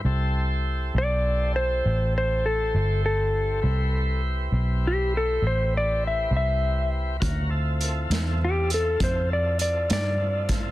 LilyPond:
<<
  \new Staff \with { instrumentName = "Electric slide guitar" } { \time 12/8 \key a \minor \tempo 4. = 67 r4. d''4 c''4 c''8 a'4 a'4~ | a'4 r4 g'8 a'8 c''8 d''8 e''8 e''4 r8 | r2 g'8 a'8 c''8 d''8 d''8 d''4 r8 | }
  \new Staff \with { instrumentName = "Tonewheel organ" } { \time 12/8 \key a \minor <e' g' a' c''>1. | <e' g' b' c''>1. | <cis' f' fis' bes'>8 <c' e' f' a'>1~ <c' e' f' a'>4. | }
  \new Staff \with { instrumentName = "Fingered electric bass" } { \clef bass \time 12/8 \key a \minor c,4. b,,4. a,,4. g,,4. | c,4. b,,4. a,,4. c,4. | d,4. e,4. f,4. g,4. | }
  \new DrumStaff \with { instrumentName = "Drums" } \drummode { \time 12/8 r4. r4. r4. r4. | r4. r4. r4. r4. | <hh bd>4 hh8 <hh sn>4 hh8 <hh bd>4 hh8 <hh sn>4 <hh bd sn>8 | }
>>